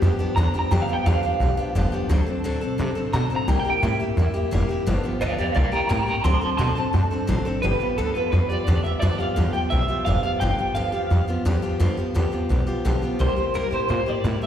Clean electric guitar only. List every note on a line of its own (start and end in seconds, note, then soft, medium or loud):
0.00 0.11 G4 loud
0.36 0.48 A#5 loud
0.59 0.71 A#5 loud
0.71 0.82 G5 medium
0.82 0.94 F5 medium
0.93 1.05 G5 medium
1.06 2.07 F5 medium
3.13 3.25 A#5 loud
3.36 3.48 A#5 loud
3.48 3.58 G5 medium
3.60 3.69 G5 loud
3.70 3.83 G5 medium
3.83 4.83 E5 loud
5.21 5.38 D5 medium
5.21 5.38 F5 medium
5.39 5.55 D5 medium
5.39 5.55 F5 medium
5.56 5.72 D5 medium
5.56 5.72 F5 medium
5.72 5.88 G5 medium
5.72 5.89 A#5 medium
5.89 6.05 G5 medium
5.89 6.06 A#5 loud
6.06 6.23 G5 medium
6.06 6.24 A#5 loud
6.24 6.39 A5 medium
6.24 6.39 C6 loud
6.40 6.56 A5 medium
6.40 6.56 C6 medium
6.57 6.74 A5 medium
6.57 6.75 C6 medium
6.75 7.10 A5 loud
7.62 7.97 B4 medium
7.98 8.14 A4 medium
8.14 8.31 B4 medium
8.32 8.48 B4 medium
8.49 8.83 D5 loud
8.84 9.00 E5 loud
9.00 9.18 D5 medium
9.18 9.52 F5 loud
9.53 9.58 G5 loud
9.70 10.05 E5 loud
10.05 10.22 F5 loud
10.23 10.40 F5 loud
10.40 10.74 G5 loud
10.75 11.24 F5 medium
13.21 13.56 C5 medium
13.55 13.73 A#4 medium
13.73 13.90 C5 medium
13.91 14.08 C5 medium
14.08 14.43 D5 loud
14.43 14.46 E5 loud